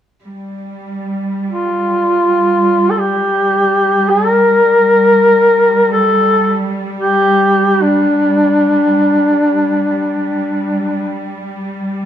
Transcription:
0.24 cello section G3
1.50 duduk F4
2.90 duduk A4
3.00 duduk G4
4.10 duduk A#4
5.92 duduk A4
6.99 duduk G4
7.82 duduk D4

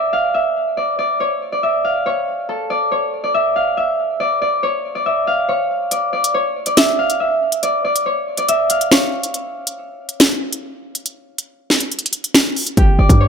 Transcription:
Already playing: harp D5 E5
0.13 harp F5
0.34 harp E5
0.77 harp D5
0.99 harp D5
1.20 harp C#5
1.52 harp D5
1.63 harp E5
1.85 harp F5
2.06 harp C#5
2.49 harp A4
2.70 harp D5
2.92 harp C#5
3.24 harp D5
3.34 harp E5
3.56 harp F5
3.77 harp E5
4.20 harp D5
4.42 harp D5
4.63 harp C#5
4.95 harp D5
5.06 harp E5
5.27 harp F5
5.49 harp C#5
5.91 harp D5, closed hi-hat
6.13 harp D5
6.24 closed hi-hat
6.34 harp C#5
6.66 harp D5, closed hi-hat
6.77 harp E5, snare, closed hi-hat
6.99 harp F5
7.10 closed hi-hat
7.20 harp E5
7.52 closed hi-hat
7.63 harp D5, closed hi-hat
7.84 harp D5
7.96 closed hi-hat
8.06 harp C#5
8.37 harp D5, closed hi-hat
8.49 harp E5, closed hi-hat
8.70 harp F5, closed hi-hat
8.81 closed hi-hat
8.91 harp C#5, snare
9.23 closed hi-hat
9.34 closed hi-hat
9.67 closed hi-hat
10.09 closed hi-hat
10.20 snare, closed hi-hat
10.53 closed hi-hat
10.95 closed hi-hat
11.06 closed hi-hat
11.38 closed hi-hat
11.70 snare
11.80 closed hi-hat
11.92 closed hi-hat
11.99 closed hi-hat
12.06 closed hi-hat
12.13 closed hi-hat
12.24 closed hi-hat
12.34 snare
12.56 open hi-hat
12.67 closed hi-hat
12.77 808-style bass G1, harp G4, kick, closed hi-hat
12.99 808-style bass G1, harp D5
13.09 808-style bass G2, kick, closed hi-hat
13.20 harp C#5

